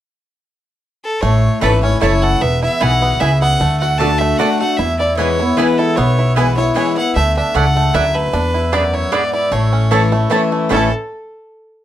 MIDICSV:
0, 0, Header, 1, 6, 480
1, 0, Start_track
1, 0, Key_signature, 3, "major"
1, 0, Tempo, 395517
1, 41, Time_signature, 3, 2, 24, 8
1, 14376, End_track
2, 0, Start_track
2, 0, Title_t, "Fiddle"
2, 0, Program_c, 0, 110
2, 1264, Note_on_c, 0, 69, 86
2, 1472, Note_on_c, 0, 73, 90
2, 1490, Note_off_c, 0, 69, 0
2, 1955, Note_off_c, 0, 73, 0
2, 1962, Note_on_c, 0, 71, 94
2, 2204, Note_off_c, 0, 71, 0
2, 2219, Note_on_c, 0, 73, 94
2, 2432, Note_off_c, 0, 73, 0
2, 2452, Note_on_c, 0, 73, 87
2, 2699, Note_on_c, 0, 78, 95
2, 2717, Note_off_c, 0, 73, 0
2, 2934, Note_on_c, 0, 76, 96
2, 2952, Note_off_c, 0, 78, 0
2, 3186, Note_off_c, 0, 76, 0
2, 3193, Note_on_c, 0, 76, 96
2, 3416, Note_on_c, 0, 78, 110
2, 3434, Note_off_c, 0, 76, 0
2, 3884, Note_on_c, 0, 76, 98
2, 3902, Note_off_c, 0, 78, 0
2, 4133, Note_off_c, 0, 76, 0
2, 4140, Note_on_c, 0, 78, 113
2, 4591, Note_off_c, 0, 78, 0
2, 4612, Note_on_c, 0, 78, 96
2, 4835, Note_on_c, 0, 81, 106
2, 4854, Note_off_c, 0, 78, 0
2, 5082, Note_on_c, 0, 76, 94
2, 5100, Note_off_c, 0, 81, 0
2, 5308, Note_on_c, 0, 78, 97
2, 5326, Note_off_c, 0, 76, 0
2, 5562, Note_off_c, 0, 78, 0
2, 5569, Note_on_c, 0, 78, 97
2, 5794, Note_on_c, 0, 76, 95
2, 5812, Note_off_c, 0, 78, 0
2, 6050, Note_off_c, 0, 76, 0
2, 6057, Note_on_c, 0, 74, 89
2, 6265, Note_off_c, 0, 74, 0
2, 6273, Note_on_c, 0, 73, 99
2, 6763, Note_on_c, 0, 71, 87
2, 6781, Note_off_c, 0, 73, 0
2, 7014, Note_on_c, 0, 69, 93
2, 7033, Note_off_c, 0, 71, 0
2, 7233, Note_on_c, 0, 73, 89
2, 7251, Note_off_c, 0, 69, 0
2, 7713, Note_off_c, 0, 73, 0
2, 7720, Note_on_c, 0, 71, 94
2, 7960, Note_off_c, 0, 71, 0
2, 7975, Note_on_c, 0, 73, 87
2, 8187, Note_off_c, 0, 73, 0
2, 8200, Note_on_c, 0, 73, 95
2, 8439, Note_off_c, 0, 73, 0
2, 8460, Note_on_c, 0, 78, 97
2, 8669, Note_off_c, 0, 78, 0
2, 8686, Note_on_c, 0, 76, 93
2, 8922, Note_off_c, 0, 76, 0
2, 8943, Note_on_c, 0, 76, 91
2, 9156, Note_on_c, 0, 78, 103
2, 9174, Note_off_c, 0, 76, 0
2, 9643, Note_on_c, 0, 76, 98
2, 9661, Note_off_c, 0, 78, 0
2, 9887, Note_on_c, 0, 71, 102
2, 9905, Note_off_c, 0, 76, 0
2, 10599, Note_on_c, 0, 74, 88
2, 10617, Note_off_c, 0, 71, 0
2, 10857, Note_on_c, 0, 73, 87
2, 10876, Note_off_c, 0, 74, 0
2, 11072, Note_on_c, 0, 74, 84
2, 11090, Note_off_c, 0, 73, 0
2, 11319, Note_off_c, 0, 74, 0
2, 11326, Note_on_c, 0, 74, 89
2, 11556, Note_on_c, 0, 73, 81
2, 11574, Note_off_c, 0, 74, 0
2, 12516, Note_off_c, 0, 73, 0
2, 13008, Note_on_c, 0, 69, 87
2, 13240, Note_off_c, 0, 69, 0
2, 14376, End_track
3, 0, Start_track
3, 0, Title_t, "Mandolin"
3, 0, Program_c, 1, 25
3, 1957, Note_on_c, 1, 57, 90
3, 1961, Note_on_c, 1, 64, 98
3, 1966, Note_on_c, 1, 73, 99
3, 1972, Note_on_c, 1, 81, 94
3, 2079, Note_off_c, 1, 57, 0
3, 2081, Note_off_c, 1, 64, 0
3, 2084, Note_off_c, 1, 73, 0
3, 2087, Note_off_c, 1, 81, 0
3, 2440, Note_on_c, 1, 57, 80
3, 2446, Note_on_c, 1, 64, 90
3, 2453, Note_on_c, 1, 73, 96
3, 2456, Note_on_c, 1, 81, 95
3, 2561, Note_off_c, 1, 57, 0
3, 2564, Note_off_c, 1, 64, 0
3, 2568, Note_off_c, 1, 73, 0
3, 2570, Note_off_c, 1, 81, 0
3, 3404, Note_on_c, 1, 59, 93
3, 3409, Note_on_c, 1, 64, 91
3, 3415, Note_on_c, 1, 71, 89
3, 3418, Note_on_c, 1, 80, 96
3, 3525, Note_off_c, 1, 59, 0
3, 3527, Note_off_c, 1, 64, 0
3, 3530, Note_off_c, 1, 71, 0
3, 3532, Note_off_c, 1, 80, 0
3, 3883, Note_on_c, 1, 59, 85
3, 3890, Note_on_c, 1, 64, 88
3, 3891, Note_on_c, 1, 71, 88
3, 3896, Note_on_c, 1, 80, 95
3, 4005, Note_off_c, 1, 59, 0
3, 4008, Note_off_c, 1, 64, 0
3, 4008, Note_off_c, 1, 71, 0
3, 4011, Note_off_c, 1, 80, 0
3, 4844, Note_on_c, 1, 57, 79
3, 4851, Note_on_c, 1, 66, 81
3, 4854, Note_on_c, 1, 74, 86
3, 4859, Note_on_c, 1, 81, 90
3, 4965, Note_off_c, 1, 57, 0
3, 4968, Note_off_c, 1, 66, 0
3, 4970, Note_off_c, 1, 74, 0
3, 4972, Note_off_c, 1, 81, 0
3, 5322, Note_on_c, 1, 57, 88
3, 5326, Note_on_c, 1, 66, 87
3, 5331, Note_on_c, 1, 74, 95
3, 5334, Note_on_c, 1, 81, 85
3, 5444, Note_off_c, 1, 57, 0
3, 5446, Note_off_c, 1, 66, 0
3, 5448, Note_off_c, 1, 74, 0
3, 5450, Note_off_c, 1, 81, 0
3, 6278, Note_on_c, 1, 59, 81
3, 6285, Note_on_c, 1, 64, 89
3, 6289, Note_on_c, 1, 71, 90
3, 6295, Note_on_c, 1, 80, 85
3, 6401, Note_off_c, 1, 59, 0
3, 6404, Note_off_c, 1, 64, 0
3, 6406, Note_off_c, 1, 71, 0
3, 6409, Note_off_c, 1, 80, 0
3, 6762, Note_on_c, 1, 59, 75
3, 6769, Note_on_c, 1, 64, 84
3, 6773, Note_on_c, 1, 71, 88
3, 6778, Note_on_c, 1, 80, 97
3, 6882, Note_off_c, 1, 59, 0
3, 6886, Note_off_c, 1, 64, 0
3, 6887, Note_off_c, 1, 71, 0
3, 6890, Note_off_c, 1, 80, 0
3, 7718, Note_on_c, 1, 59, 91
3, 7722, Note_on_c, 1, 64, 87
3, 7727, Note_on_c, 1, 71, 83
3, 7730, Note_on_c, 1, 80, 92
3, 7838, Note_off_c, 1, 59, 0
3, 7840, Note_off_c, 1, 64, 0
3, 7843, Note_off_c, 1, 71, 0
3, 7844, Note_off_c, 1, 80, 0
3, 8198, Note_on_c, 1, 59, 91
3, 8203, Note_on_c, 1, 64, 83
3, 8208, Note_on_c, 1, 71, 85
3, 8212, Note_on_c, 1, 80, 97
3, 8317, Note_off_c, 1, 59, 0
3, 8320, Note_off_c, 1, 64, 0
3, 8322, Note_off_c, 1, 71, 0
3, 8325, Note_off_c, 1, 80, 0
3, 9154, Note_on_c, 1, 57, 82
3, 9160, Note_on_c, 1, 64, 94
3, 9163, Note_on_c, 1, 74, 100
3, 9167, Note_on_c, 1, 78, 99
3, 9274, Note_off_c, 1, 57, 0
3, 9277, Note_off_c, 1, 64, 0
3, 9278, Note_off_c, 1, 74, 0
3, 9280, Note_off_c, 1, 78, 0
3, 9633, Note_on_c, 1, 57, 85
3, 9639, Note_on_c, 1, 64, 86
3, 9642, Note_on_c, 1, 74, 96
3, 9648, Note_on_c, 1, 78, 93
3, 9752, Note_off_c, 1, 57, 0
3, 9755, Note_off_c, 1, 64, 0
3, 9757, Note_off_c, 1, 74, 0
3, 9760, Note_off_c, 1, 78, 0
3, 10586, Note_on_c, 1, 62, 85
3, 10591, Note_on_c, 1, 68, 96
3, 10599, Note_on_c, 1, 76, 99
3, 10603, Note_on_c, 1, 83, 101
3, 10707, Note_off_c, 1, 62, 0
3, 10710, Note_off_c, 1, 68, 0
3, 10714, Note_off_c, 1, 76, 0
3, 10716, Note_off_c, 1, 83, 0
3, 11068, Note_on_c, 1, 62, 89
3, 11073, Note_on_c, 1, 68, 93
3, 11078, Note_on_c, 1, 76, 89
3, 11083, Note_on_c, 1, 83, 92
3, 11188, Note_off_c, 1, 62, 0
3, 11190, Note_off_c, 1, 68, 0
3, 11193, Note_off_c, 1, 76, 0
3, 11195, Note_off_c, 1, 83, 0
3, 12024, Note_on_c, 1, 57, 89
3, 12031, Note_on_c, 1, 64, 89
3, 12034, Note_on_c, 1, 73, 97
3, 12040, Note_on_c, 1, 81, 107
3, 12146, Note_off_c, 1, 57, 0
3, 12149, Note_off_c, 1, 64, 0
3, 12150, Note_off_c, 1, 73, 0
3, 12153, Note_off_c, 1, 81, 0
3, 12503, Note_on_c, 1, 57, 78
3, 12505, Note_on_c, 1, 64, 89
3, 12513, Note_on_c, 1, 73, 94
3, 12517, Note_on_c, 1, 81, 97
3, 12625, Note_off_c, 1, 57, 0
3, 12627, Note_off_c, 1, 64, 0
3, 12630, Note_off_c, 1, 73, 0
3, 12632, Note_off_c, 1, 81, 0
3, 12981, Note_on_c, 1, 57, 89
3, 12993, Note_on_c, 1, 64, 87
3, 13001, Note_on_c, 1, 73, 94
3, 13005, Note_on_c, 1, 81, 101
3, 13193, Note_off_c, 1, 57, 0
3, 13199, Note_off_c, 1, 64, 0
3, 13203, Note_off_c, 1, 73, 0
3, 13205, Note_off_c, 1, 81, 0
3, 14376, End_track
4, 0, Start_track
4, 0, Title_t, "Five-string banjo"
4, 0, Program_c, 2, 105
4, 1486, Note_on_c, 2, 57, 72
4, 1955, Note_off_c, 2, 57, 0
4, 1969, Note_on_c, 2, 57, 61
4, 2223, Note_on_c, 2, 61, 56
4, 2446, Note_on_c, 2, 64, 66
4, 2656, Note_off_c, 2, 57, 0
4, 2708, Note_on_c, 2, 69, 56
4, 2886, Note_off_c, 2, 61, 0
4, 2927, Note_on_c, 2, 59, 70
4, 2930, Note_off_c, 2, 64, 0
4, 2933, Note_off_c, 2, 69, 0
4, 3186, Note_on_c, 2, 64, 55
4, 3393, Note_off_c, 2, 64, 0
4, 3408, Note_on_c, 2, 64, 60
4, 3616, Note_off_c, 2, 59, 0
4, 3666, Note_on_c, 2, 59, 67
4, 3878, Note_off_c, 2, 64, 0
4, 3892, Note_on_c, 2, 64, 68
4, 4136, Note_off_c, 2, 59, 0
4, 4151, Note_on_c, 2, 59, 62
4, 4372, Note_off_c, 2, 59, 0
4, 4374, Note_off_c, 2, 64, 0
4, 4377, Note_on_c, 2, 57, 82
4, 4634, Note_on_c, 2, 66, 57
4, 4856, Note_on_c, 2, 69, 66
4, 5060, Note_off_c, 2, 57, 0
4, 5109, Note_on_c, 2, 57, 72
4, 5292, Note_off_c, 2, 66, 0
4, 5336, Note_on_c, 2, 66, 65
4, 5539, Note_off_c, 2, 69, 0
4, 5575, Note_off_c, 2, 57, 0
4, 5589, Note_on_c, 2, 57, 63
4, 5813, Note_on_c, 2, 64, 62
4, 5814, Note_off_c, 2, 57, 0
4, 5815, Note_off_c, 2, 66, 0
4, 6068, Note_off_c, 2, 64, 0
4, 6068, Note_on_c, 2, 64, 53
4, 6296, Note_on_c, 2, 59, 61
4, 6546, Note_off_c, 2, 64, 0
4, 6551, Note_on_c, 2, 64, 58
4, 6756, Note_off_c, 2, 59, 0
4, 6771, Note_on_c, 2, 59, 63
4, 7022, Note_off_c, 2, 64, 0
4, 7027, Note_on_c, 2, 64, 63
4, 7241, Note_off_c, 2, 59, 0
4, 7256, Note_on_c, 2, 59, 76
4, 7504, Note_off_c, 2, 64, 0
4, 7508, Note_on_c, 2, 64, 55
4, 7720, Note_off_c, 2, 59, 0
4, 7734, Note_on_c, 2, 59, 61
4, 7985, Note_off_c, 2, 64, 0
4, 7985, Note_on_c, 2, 64, 54
4, 8214, Note_off_c, 2, 64, 0
4, 8214, Note_on_c, 2, 64, 68
4, 8413, Note_off_c, 2, 59, 0
4, 8462, Note_off_c, 2, 64, 0
4, 8466, Note_on_c, 2, 64, 59
4, 8692, Note_on_c, 2, 57, 77
4, 8950, Note_on_c, 2, 62, 54
4, 8986, Note_off_c, 2, 64, 0
4, 9174, Note_on_c, 2, 69, 64
4, 9370, Note_off_c, 2, 57, 0
4, 9424, Note_on_c, 2, 57, 67
4, 9602, Note_off_c, 2, 62, 0
4, 9645, Note_on_c, 2, 64, 70
4, 9850, Note_off_c, 2, 69, 0
4, 9875, Note_off_c, 2, 57, 0
4, 9890, Note_on_c, 2, 57, 61
4, 10114, Note_on_c, 2, 62, 66
4, 10117, Note_off_c, 2, 57, 0
4, 10150, Note_off_c, 2, 64, 0
4, 10368, Note_on_c, 2, 64, 52
4, 10593, Note_on_c, 2, 59, 60
4, 10799, Note_off_c, 2, 62, 0
4, 10839, Note_off_c, 2, 64, 0
4, 10844, Note_on_c, 2, 64, 57
4, 11059, Note_off_c, 2, 59, 0
4, 11074, Note_on_c, 2, 59, 68
4, 11323, Note_off_c, 2, 64, 0
4, 11328, Note_on_c, 2, 64, 64
4, 11548, Note_off_c, 2, 59, 0
4, 11553, Note_on_c, 2, 57, 75
4, 11804, Note_on_c, 2, 61, 58
4, 12032, Note_on_c, 2, 69, 61
4, 12238, Note_off_c, 2, 57, 0
4, 12284, Note_on_c, 2, 57, 68
4, 12468, Note_off_c, 2, 61, 0
4, 12506, Note_off_c, 2, 64, 0
4, 12511, Note_on_c, 2, 64, 63
4, 12718, Note_off_c, 2, 69, 0
4, 12753, Note_off_c, 2, 57, 0
4, 12768, Note_on_c, 2, 57, 58
4, 12979, Note_off_c, 2, 57, 0
4, 12993, Note_on_c, 2, 57, 79
4, 12994, Note_off_c, 2, 64, 0
4, 13017, Note_on_c, 2, 61, 74
4, 13040, Note_on_c, 2, 64, 80
4, 13064, Note_on_c, 2, 69, 76
4, 13233, Note_off_c, 2, 57, 0
4, 13245, Note_off_c, 2, 61, 0
4, 13257, Note_off_c, 2, 64, 0
4, 13270, Note_off_c, 2, 69, 0
4, 14376, End_track
5, 0, Start_track
5, 0, Title_t, "Steel-string acoustic guitar"
5, 0, Program_c, 3, 25
5, 1488, Note_on_c, 3, 45, 89
5, 1957, Note_on_c, 3, 52, 83
5, 1966, Note_on_c, 3, 57, 83
5, 1976, Note_on_c, 3, 61, 88
5, 1984, Note_on_c, 3, 64, 95
5, 2195, Note_off_c, 3, 64, 0
5, 2209, Note_off_c, 3, 52, 0
5, 2210, Note_on_c, 3, 64, 59
5, 2213, Note_off_c, 3, 57, 0
5, 2218, Note_off_c, 3, 61, 0
5, 2240, Note_on_c, 3, 61, 50
5, 2406, Note_off_c, 3, 45, 0
5, 2434, Note_off_c, 3, 64, 0
5, 2444, Note_on_c, 3, 52, 88
5, 2450, Note_off_c, 3, 61, 0
5, 2454, Note_on_c, 3, 57, 88
5, 2464, Note_on_c, 3, 61, 105
5, 2471, Note_on_c, 3, 64, 97
5, 2906, Note_off_c, 3, 52, 0
5, 2911, Note_off_c, 3, 57, 0
5, 2917, Note_off_c, 3, 61, 0
5, 2920, Note_off_c, 3, 64, 0
5, 2929, Note_on_c, 3, 40, 89
5, 3405, Note_on_c, 3, 47, 90
5, 3848, Note_off_c, 3, 40, 0
5, 3868, Note_off_c, 3, 47, 0
5, 3887, Note_on_c, 3, 49, 95
5, 4349, Note_off_c, 3, 49, 0
5, 4366, Note_on_c, 3, 50, 82
5, 4823, Note_off_c, 3, 50, 0
5, 4838, Note_on_c, 3, 50, 81
5, 4849, Note_on_c, 3, 57, 84
5, 4860, Note_on_c, 3, 62, 85
5, 4869, Note_on_c, 3, 66, 95
5, 5304, Note_off_c, 3, 50, 0
5, 5309, Note_off_c, 3, 57, 0
5, 5314, Note_off_c, 3, 62, 0
5, 5319, Note_off_c, 3, 66, 0
5, 5324, Note_on_c, 3, 50, 95
5, 5335, Note_on_c, 3, 57, 97
5, 5344, Note_on_c, 3, 62, 91
5, 5352, Note_on_c, 3, 66, 97
5, 5565, Note_off_c, 3, 66, 0
5, 5574, Note_off_c, 3, 50, 0
5, 5580, Note_off_c, 3, 57, 0
5, 5580, Note_on_c, 3, 66, 57
5, 5584, Note_off_c, 3, 62, 0
5, 5608, Note_on_c, 3, 62, 52
5, 5800, Note_off_c, 3, 66, 0
5, 5807, Note_on_c, 3, 40, 83
5, 5814, Note_off_c, 3, 62, 0
5, 6281, Note_on_c, 3, 52, 78
5, 6295, Note_on_c, 3, 56, 88
5, 6302, Note_on_c, 3, 59, 86
5, 6312, Note_on_c, 3, 64, 89
5, 6522, Note_off_c, 3, 64, 0
5, 6531, Note_off_c, 3, 52, 0
5, 6536, Note_on_c, 3, 64, 62
5, 6538, Note_off_c, 3, 56, 0
5, 6542, Note_off_c, 3, 59, 0
5, 6569, Note_on_c, 3, 59, 53
5, 6723, Note_off_c, 3, 40, 0
5, 6757, Note_off_c, 3, 64, 0
5, 6758, Note_on_c, 3, 52, 86
5, 6766, Note_off_c, 3, 59, 0
5, 6773, Note_on_c, 3, 56, 85
5, 6780, Note_on_c, 3, 59, 95
5, 6788, Note_on_c, 3, 64, 95
5, 7221, Note_off_c, 3, 52, 0
5, 7228, Note_off_c, 3, 56, 0
5, 7232, Note_off_c, 3, 59, 0
5, 7236, Note_off_c, 3, 64, 0
5, 7247, Note_on_c, 3, 47, 85
5, 7722, Note_on_c, 3, 52, 78
5, 7731, Note_on_c, 3, 56, 85
5, 7742, Note_on_c, 3, 59, 94
5, 7751, Note_on_c, 3, 64, 91
5, 7965, Note_off_c, 3, 64, 0
5, 7969, Note_off_c, 3, 52, 0
5, 7973, Note_off_c, 3, 56, 0
5, 7979, Note_off_c, 3, 59, 0
5, 7979, Note_on_c, 3, 64, 63
5, 8007, Note_on_c, 3, 59, 50
5, 8160, Note_off_c, 3, 47, 0
5, 8193, Note_on_c, 3, 52, 84
5, 8196, Note_off_c, 3, 64, 0
5, 8199, Note_off_c, 3, 59, 0
5, 8206, Note_on_c, 3, 56, 95
5, 8213, Note_on_c, 3, 59, 99
5, 8222, Note_on_c, 3, 64, 102
5, 8436, Note_off_c, 3, 64, 0
5, 8444, Note_off_c, 3, 52, 0
5, 8450, Note_off_c, 3, 56, 0
5, 8450, Note_on_c, 3, 64, 63
5, 8454, Note_off_c, 3, 59, 0
5, 8482, Note_on_c, 3, 59, 47
5, 8671, Note_off_c, 3, 64, 0
5, 8683, Note_on_c, 3, 50, 78
5, 8687, Note_off_c, 3, 59, 0
5, 9165, Note_on_c, 3, 44, 81
5, 9596, Note_off_c, 3, 50, 0
5, 9620, Note_off_c, 3, 44, 0
5, 9642, Note_on_c, 3, 42, 98
5, 10098, Note_off_c, 3, 42, 0
5, 10114, Note_on_c, 3, 40, 87
5, 10587, Note_off_c, 3, 40, 0
5, 10592, Note_on_c, 3, 42, 83
5, 11052, Note_off_c, 3, 42, 0
5, 11066, Note_on_c, 3, 44, 93
5, 11529, Note_off_c, 3, 44, 0
5, 11550, Note_on_c, 3, 45, 85
5, 12026, Note_on_c, 3, 52, 88
5, 12035, Note_on_c, 3, 57, 83
5, 12047, Note_on_c, 3, 61, 87
5, 12051, Note_on_c, 3, 64, 96
5, 12264, Note_off_c, 3, 64, 0
5, 12276, Note_off_c, 3, 52, 0
5, 12278, Note_on_c, 3, 64, 57
5, 12281, Note_off_c, 3, 57, 0
5, 12287, Note_off_c, 3, 61, 0
5, 12308, Note_on_c, 3, 61, 50
5, 12468, Note_off_c, 3, 45, 0
5, 12497, Note_on_c, 3, 52, 82
5, 12501, Note_off_c, 3, 64, 0
5, 12508, Note_off_c, 3, 61, 0
5, 12511, Note_on_c, 3, 57, 92
5, 12523, Note_on_c, 3, 61, 97
5, 12528, Note_on_c, 3, 64, 96
5, 12965, Note_off_c, 3, 52, 0
5, 12972, Note_off_c, 3, 57, 0
5, 12976, Note_on_c, 3, 45, 86
5, 12978, Note_off_c, 3, 61, 0
5, 12980, Note_off_c, 3, 64, 0
5, 12986, Note_on_c, 3, 52, 74
5, 12991, Note_on_c, 3, 57, 89
5, 12997, Note_on_c, 3, 61, 91
5, 13005, Note_on_c, 3, 64, 93
5, 13191, Note_off_c, 3, 45, 0
5, 13195, Note_off_c, 3, 52, 0
5, 13198, Note_off_c, 3, 57, 0
5, 13201, Note_off_c, 3, 61, 0
5, 13205, Note_off_c, 3, 64, 0
5, 14376, End_track
6, 0, Start_track
6, 0, Title_t, "Upright bass"
6, 0, Program_c, 4, 32
6, 1489, Note_on_c, 4, 33, 85
6, 1782, Note_off_c, 4, 33, 0
6, 1972, Note_on_c, 4, 32, 83
6, 2380, Note_off_c, 4, 32, 0
6, 2457, Note_on_c, 4, 30, 83
6, 2864, Note_off_c, 4, 30, 0
6, 2937, Note_on_c, 4, 28, 86
6, 3228, Note_off_c, 4, 28, 0
6, 3418, Note_on_c, 4, 35, 88
6, 3825, Note_off_c, 4, 35, 0
6, 3890, Note_on_c, 4, 37, 78
6, 4300, Note_off_c, 4, 37, 0
6, 4372, Note_on_c, 4, 38, 89
6, 5249, Note_off_c, 4, 38, 0
6, 5811, Note_on_c, 4, 40, 84
6, 6686, Note_off_c, 4, 40, 0
6, 7251, Note_on_c, 4, 35, 75
6, 8125, Note_off_c, 4, 35, 0
6, 8689, Note_on_c, 4, 38, 92
6, 8979, Note_off_c, 4, 38, 0
6, 9160, Note_on_c, 4, 37, 86
6, 9568, Note_off_c, 4, 37, 0
6, 9641, Note_on_c, 4, 38, 81
6, 10048, Note_off_c, 4, 38, 0
6, 10115, Note_on_c, 4, 40, 94
6, 10992, Note_off_c, 4, 40, 0
6, 11546, Note_on_c, 4, 33, 86
6, 12426, Note_off_c, 4, 33, 0
6, 12993, Note_on_c, 4, 33, 91
6, 13232, Note_off_c, 4, 33, 0
6, 14376, End_track
0, 0, End_of_file